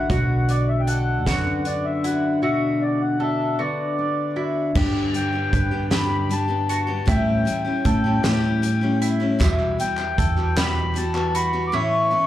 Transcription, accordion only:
0.00 0.52 F#5 medium
0.50 0.70 D5 medium
0.68 0.81 E5 medium
0.80 0.88 G5 medium
0.87 1.68 F#5 medium
1.66 1.86 D5 medium
1.84 2.05 E5 medium
2.05 2.41 F#5 medium
2.43 2.83 E5 medium
2.82 3.02 D5 medium
3.02 3.22 F#5 medium
3.21 3.61 E5 medium
3.59 4.43 D5 medium
5.15 5.89 G5 medium
5.93 6.33 B5 medium
6.32 6.68 A5 medium
6.70 7.10 A5 medium
7.09 8.99 G5 medium
9.80 10.60 G5 medium
10.57 10.97 B5 loud
10.97 11.27 A5 medium
11.28 11.35 A5 medium
11.36 11.65 B5 medium
11.68 11.74 D6 medium
11.74 12.27 C#6 loud

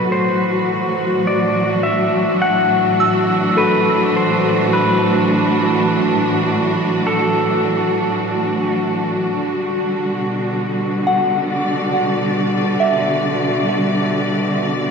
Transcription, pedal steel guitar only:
0.00 0.12 B4 medium
0.12 1.30 C5 medium
1.27 1.86 D5 medium
1.83 2.43 E5 medium
2.42 3.60 F#5 medium
3.58 4.16 B4 medium
4.16 4.73 C5 medium
4.73 7.10 B4 medium
7.07 8.74 A4 medium

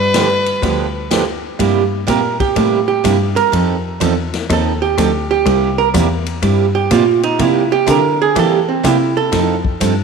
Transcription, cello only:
0.00 0.43 G2 medium
0.63 1.40 D2 medium
1.59 2.06 G2 medium
2.08 2.55 A#2 medium
2.56 3.03 A2 medium
3.05 3.35 G2 medium
3.37 3.52 G2 soft
3.53 4.00 F2 medium
4.01 4.31 E2 medium
4.34 4.49 E2 soft
4.50 4.97 D#2 medium
4.98 5.45 D2 medium
5.46 5.93 C2 medium
5.94 6.41 E2 medium
6.43 6.90 G2 medium
6.91 7.38 A#2 medium
7.39 7.86 C3 medium
7.88 8.35 D3 medium
8.36 8.83 E3 medium
8.84 9.31 C3 medium
9.33 9.80 F2 medium
9.81 10.04 G2 medium

